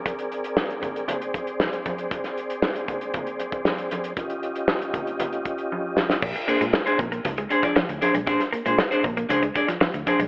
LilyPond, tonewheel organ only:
\new Staff \with { instrumentName = "Tonewheel organ" } { \time 4/4 \key bes \mixolydian \tempo 4 = 117 << { <c' aes' d''>1~ | <c' aes' d''>1 | <des' f' ees''>1 | r1 |
r1 | } \\ { bes'2 c''2~ | c''1 | g'1 | r1 |
r1 | } >> }